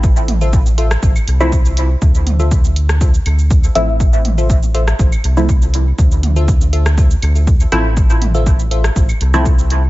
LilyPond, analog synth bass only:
\new Staff \with { instrumentName = "Analog synth bass" } { \clef bass \time 4/4 \key d \minor \tempo 4 = 121 a,,2 a,,8 c,4. | d,2~ d,8 d,4 a,,8~ | a,,2 a,,8 c,4. | d,2~ d,8 d,4 a,,8~ |
a,,2 a,,8 c,4. | }